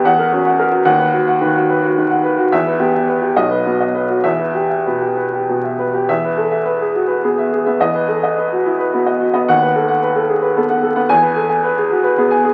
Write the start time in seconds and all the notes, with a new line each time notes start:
0.05 E2 F#5
0.19 A#4
0.33 C#4 F#4
0.46 F#5
0.59 A#4
0.72 F#4
0.85 D#2 F#5
0.99 B4
1.13 F#4
1.27 F#5
1.41 D#3 B4
1.56 F#4
1.70 B4
1.83 F#4
1.97 D#3
2.10 F#5
2.24 B4
2.38 F#4
2.52 E2 E5
2.66 B4
2.80 B3 G4
2.94 E5
3.09 B4
3.22 G4
3.36 B1 D#5
3.50 B4
3.66 B3 F#4
3.80 D#5
3.94 B4
4.09 F#4
4.24 E2 E5
4.39 B4
4.55 G4
4.70 E5
4.86 B2 B4
5.01 G4
5.17 B4
5.33 G4
5.49 B2
5.64 E5
5.79 B4
5.94 G4
6.08 E2 E5
6.24 B4
6.37 A4
6.51 E5
6.65 B4
6.80 G#4
6.95 F#4
7.08 B4
7.24 B3 G#4
7.38 E5
7.53 G#4
7.66 B3 E5
7.80 E2 D#5
7.95 B4
8.08 A4
8.23 D#5
8.38 B4
8.52 F#4
8.66 E4
8.79 B4
8.93 B3 F#4
9.06 D#5
9.20 F#4
9.33 B3 D#5
9.48 D#2 F#5
9.62 B4
9.76 A4
9.88 F#5
10.03 B4
10.16 A4
10.29 G#4
10.42 B4
10.57 B3 A4
10.69 F#5
10.83 A4
10.96 B3 F#5
11.09 E2 G#5
11.22 B4
11.36 A4
11.49 G#5
11.63 B4
11.77 G#4
11.91 F#4
12.04 B4
12.18 B3 G#4
12.31 G#5
12.44 G#4